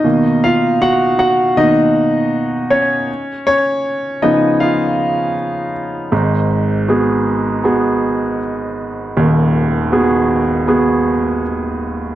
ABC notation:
X:1
M:4/4
L:1/8
Q:1/4=79
K:G#dor
V:1 name="Grand piano"
[Dd] [Ee] [Ff] [Ff] [Dd]3 [Cc]- | [Cc] [Cc]2 [Dd] [Ee]3 z | z8 | z8 |]
V:2 name="Grand piano"
[B,,D,A,]4 [B,,D,A,] z3 | z3 [C,E,B,]3 z2 | [G,,,G,,]2 [B,FG]2 [B,FG]2 z2 | [D,,,D,,]2 [B,FG]2 [B,FG]2 z2 |]